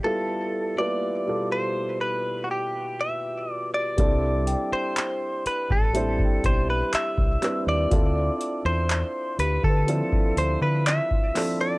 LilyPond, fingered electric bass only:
\new Staff \with { instrumentName = "Fingered electric bass" } { \clef bass \time 4/4 \key c \major \tempo 4 = 61 r1 | c,8. r4 a,,8. b,,8 r16 c,16 r16 ees,16 | d,8 r16 e,8 r16 d,16 d8 r16 d,16 d8 r8. | }